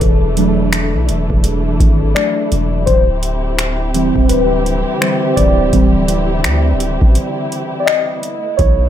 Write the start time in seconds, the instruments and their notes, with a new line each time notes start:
Already playing: string section E3 A3 D4, synth keys G#4 A4 B4
0.01 808-style bass E1, string section E4, kick, closed hi-hat
0.37 synth keys F#3 A3 D4, closed hi-hat
0.73 finger snap, closed hi-hat
0.94 808-style bass B1
1.09 808-style bass E1, closed hi-hat
1.30 808-style bass E1, kick
1.44 closed hi-hat
1.80 808-style bass G#1, kick, closed hi-hat
2.15 synth keys F#3 A3 D4 D5, finger snap
2.52 808-style bass E1, closed hi-hat
2.86 808-style bass D1, string section D3 C4 G4, synth keys C5, kick, closed hi-hat
3.23 closed hi-hat
3.59 finger snap, closed hi-hat
3.94 synth keys E3 G3 C4, closed hi-hat
4.16 808-style bass D1, kick
4.29 synth keys B4, closed hi-hat
4.66 closed hi-hat
5.01 synth keys E3 G3 C4 C5, finger snap
5.36 808-style bass D1, synth keys D5, kick, closed hi-hat
5.73 808-style bass D1, synth keys E3 G3 C4, kick, closed hi-hat
6.08 closed hi-hat
6.44 808-style bass D2, finger snap, closed hi-hat
6.73 808-style bass D1
6.80 closed hi-hat
7.01 808-style bass A1, kick
7.15 closed hi-hat
7.52 closed hi-hat
7.80 synth keys D5
7.86 synth keys D#5, finger snap
8.23 string section A3 B3, closed hi-hat
8.57 808-style bass B1, synth keys C#5, kick, closed hi-hat